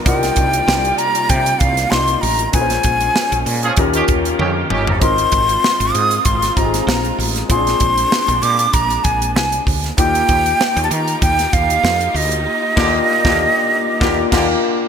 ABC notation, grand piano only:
X:1
M:4/4
L:1/16
Q:"Swing 16ths" 1/4=97
K:Eb
V:1 name="Grand piano"
[DEFB]12 [DEFG]4 | [_DFA_c=c]8 [DFGB]8 | [CEFB]8- [CEFB]2 [CEFGA]6 | [C_D=DFA]16 |
[B,EFG]16 | z2 [B,DFG]2 z [B,DFG]2 z3 [B,DFG]2 [B,DFG]2 z2 |]